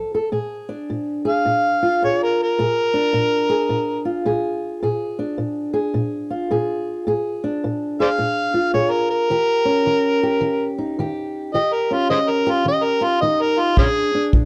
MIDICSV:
0, 0, Header, 1, 4, 480
1, 0, Start_track
1, 0, Tempo, 559701
1, 288, Time_signature, 4, 2, 24, 8
1, 12393, End_track
2, 0, Start_track
2, 0, Title_t, "Harmonica"
2, 0, Program_c, 0, 22
2, 1101, Note_on_c, 0, 77, 88
2, 1718, Note_off_c, 0, 77, 0
2, 1754, Note_on_c, 0, 73, 83
2, 1899, Note_off_c, 0, 73, 0
2, 1911, Note_on_c, 0, 70, 82
2, 2058, Note_off_c, 0, 70, 0
2, 2081, Note_on_c, 0, 70, 102
2, 3475, Note_off_c, 0, 70, 0
2, 6872, Note_on_c, 0, 72, 72
2, 6872, Note_on_c, 0, 74, 72
2, 6872, Note_on_c, 0, 77, 103
2, 6928, Note_off_c, 0, 74, 0
2, 6937, Note_off_c, 0, 72, 0
2, 7485, Note_off_c, 0, 77, 0
2, 7493, Note_on_c, 0, 73, 87
2, 7637, Note_on_c, 0, 70, 80
2, 7650, Note_off_c, 0, 73, 0
2, 7799, Note_off_c, 0, 70, 0
2, 7804, Note_on_c, 0, 70, 109
2, 9213, Note_off_c, 0, 70, 0
2, 9900, Note_on_c, 0, 75, 103
2, 10057, Note_on_c, 0, 70, 78
2, 10070, Note_off_c, 0, 75, 0
2, 10233, Note_on_c, 0, 65, 93
2, 10245, Note_off_c, 0, 70, 0
2, 10373, Note_off_c, 0, 65, 0
2, 10378, Note_on_c, 0, 68, 78
2, 10378, Note_on_c, 0, 72, 78
2, 10378, Note_on_c, 0, 75, 111
2, 10442, Note_off_c, 0, 72, 0
2, 10453, Note_off_c, 0, 68, 0
2, 10548, Note_on_c, 0, 70, 95
2, 10561, Note_off_c, 0, 75, 0
2, 10720, Note_on_c, 0, 65, 92
2, 10733, Note_off_c, 0, 70, 0
2, 10860, Note_off_c, 0, 65, 0
2, 10875, Note_on_c, 0, 75, 95
2, 11008, Note_on_c, 0, 70, 92
2, 11021, Note_off_c, 0, 75, 0
2, 11181, Note_on_c, 0, 65, 91
2, 11194, Note_off_c, 0, 70, 0
2, 11324, Note_off_c, 0, 65, 0
2, 11329, Note_on_c, 0, 75, 102
2, 11504, Note_on_c, 0, 70, 90
2, 11517, Note_off_c, 0, 75, 0
2, 11658, Note_on_c, 0, 65, 93
2, 11671, Note_off_c, 0, 70, 0
2, 11807, Note_off_c, 0, 65, 0
2, 11820, Note_on_c, 0, 61, 76
2, 11820, Note_on_c, 0, 65, 76
2, 11820, Note_on_c, 0, 68, 109
2, 11873, Note_off_c, 0, 65, 0
2, 11895, Note_off_c, 0, 61, 0
2, 12277, Note_off_c, 0, 68, 0
2, 12393, End_track
3, 0, Start_track
3, 0, Title_t, "Steel-string acoustic guitar"
3, 0, Program_c, 1, 25
3, 0, Note_on_c, 1, 53, 70
3, 0, Note_on_c, 1, 69, 64
3, 114, Note_off_c, 1, 69, 0
3, 125, Note_on_c, 1, 69, 61
3, 252, Note_off_c, 1, 53, 0
3, 274, Note_off_c, 1, 69, 0
3, 274, Note_on_c, 1, 46, 72
3, 277, Note_on_c, 1, 68, 67
3, 590, Note_on_c, 1, 62, 53
3, 727, Note_off_c, 1, 46, 0
3, 771, Note_on_c, 1, 46, 71
3, 1069, Note_off_c, 1, 68, 0
3, 1072, Note_on_c, 1, 68, 74
3, 1216, Note_off_c, 1, 46, 0
3, 1247, Note_on_c, 1, 46, 72
3, 1566, Note_on_c, 1, 65, 59
3, 1695, Note_off_c, 1, 46, 0
3, 1736, Note_on_c, 1, 46, 73
3, 1739, Note_off_c, 1, 68, 0
3, 1742, Note_on_c, 1, 68, 66
3, 2180, Note_off_c, 1, 46, 0
3, 2219, Note_on_c, 1, 46, 75
3, 2220, Note_off_c, 1, 68, 0
3, 2224, Note_on_c, 1, 68, 66
3, 2249, Note_off_c, 1, 62, 0
3, 2519, Note_on_c, 1, 62, 56
3, 2661, Note_off_c, 1, 46, 0
3, 2685, Note_on_c, 1, 46, 73
3, 2994, Note_off_c, 1, 68, 0
3, 2998, Note_on_c, 1, 68, 74
3, 3135, Note_off_c, 1, 46, 0
3, 3168, Note_on_c, 1, 46, 81
3, 3472, Note_off_c, 1, 65, 0
3, 3476, Note_on_c, 1, 65, 58
3, 3617, Note_off_c, 1, 46, 0
3, 3649, Note_on_c, 1, 46, 78
3, 3650, Note_off_c, 1, 68, 0
3, 3653, Note_on_c, 1, 68, 68
3, 4098, Note_off_c, 1, 46, 0
3, 4138, Note_on_c, 1, 46, 79
3, 4141, Note_off_c, 1, 68, 0
3, 4145, Note_on_c, 1, 68, 65
3, 4170, Note_off_c, 1, 62, 0
3, 4449, Note_on_c, 1, 62, 52
3, 4582, Note_off_c, 1, 46, 0
3, 4612, Note_on_c, 1, 46, 74
3, 4915, Note_off_c, 1, 68, 0
3, 4918, Note_on_c, 1, 68, 70
3, 5059, Note_off_c, 1, 46, 0
3, 5094, Note_on_c, 1, 46, 76
3, 5403, Note_off_c, 1, 65, 0
3, 5406, Note_on_c, 1, 65, 58
3, 5540, Note_off_c, 1, 46, 0
3, 5573, Note_off_c, 1, 68, 0
3, 5579, Note_on_c, 1, 46, 75
3, 5585, Note_on_c, 1, 68, 69
3, 6023, Note_off_c, 1, 46, 0
3, 6039, Note_off_c, 1, 68, 0
3, 6040, Note_off_c, 1, 65, 0
3, 6041, Note_off_c, 1, 62, 0
3, 6061, Note_on_c, 1, 46, 69
3, 6069, Note_on_c, 1, 68, 69
3, 6378, Note_on_c, 1, 62, 56
3, 6504, Note_off_c, 1, 46, 0
3, 6552, Note_on_c, 1, 46, 74
3, 6845, Note_off_c, 1, 68, 0
3, 6861, Note_on_c, 1, 68, 71
3, 6989, Note_off_c, 1, 46, 0
3, 7020, Note_on_c, 1, 46, 78
3, 7324, Note_on_c, 1, 65, 59
3, 7462, Note_off_c, 1, 46, 0
3, 7485, Note_off_c, 1, 68, 0
3, 7491, Note_on_c, 1, 46, 74
3, 7495, Note_on_c, 1, 68, 68
3, 7938, Note_off_c, 1, 46, 0
3, 7954, Note_off_c, 1, 68, 0
3, 7957, Note_off_c, 1, 65, 0
3, 7964, Note_off_c, 1, 62, 0
3, 7978, Note_on_c, 1, 51, 73
3, 7983, Note_on_c, 1, 67, 66
3, 8278, Note_on_c, 1, 61, 56
3, 8421, Note_off_c, 1, 51, 0
3, 8458, Note_on_c, 1, 51, 75
3, 8772, Note_off_c, 1, 67, 0
3, 8775, Note_on_c, 1, 67, 69
3, 8900, Note_off_c, 1, 51, 0
3, 8925, Note_on_c, 1, 51, 77
3, 9248, Note_on_c, 1, 63, 57
3, 9373, Note_off_c, 1, 51, 0
3, 9422, Note_off_c, 1, 67, 0
3, 9423, Note_on_c, 1, 51, 69
3, 9431, Note_on_c, 1, 67, 69
3, 9861, Note_off_c, 1, 51, 0
3, 9871, Note_off_c, 1, 61, 0
3, 9877, Note_off_c, 1, 63, 0
3, 9894, Note_off_c, 1, 67, 0
3, 9899, Note_on_c, 1, 51, 73
3, 9904, Note_on_c, 1, 67, 71
3, 10211, Note_on_c, 1, 61, 53
3, 10338, Note_off_c, 1, 51, 0
3, 10377, Note_on_c, 1, 51, 71
3, 10678, Note_off_c, 1, 67, 0
3, 10691, Note_on_c, 1, 67, 73
3, 10816, Note_off_c, 1, 51, 0
3, 10850, Note_on_c, 1, 51, 76
3, 11155, Note_on_c, 1, 63, 59
3, 11292, Note_off_c, 1, 51, 0
3, 11330, Note_off_c, 1, 63, 0
3, 11337, Note_on_c, 1, 51, 72
3, 11345, Note_on_c, 1, 63, 64
3, 11775, Note_off_c, 1, 51, 0
3, 11793, Note_off_c, 1, 61, 0
3, 11793, Note_off_c, 1, 63, 0
3, 11815, Note_off_c, 1, 67, 0
3, 11818, Note_on_c, 1, 46, 73
3, 11824, Note_on_c, 1, 62, 63
3, 12128, Note_off_c, 1, 62, 0
3, 12132, Note_on_c, 1, 62, 55
3, 12254, Note_off_c, 1, 46, 0
3, 12298, Note_on_c, 1, 46, 73
3, 12393, Note_off_c, 1, 46, 0
3, 12393, Note_off_c, 1, 62, 0
3, 12393, End_track
4, 0, Start_track
4, 0, Title_t, "Drums"
4, 11810, Note_on_c, 9, 36, 67
4, 11896, Note_off_c, 9, 36, 0
4, 12291, Note_on_c, 9, 36, 64
4, 12377, Note_off_c, 9, 36, 0
4, 12393, End_track
0, 0, End_of_file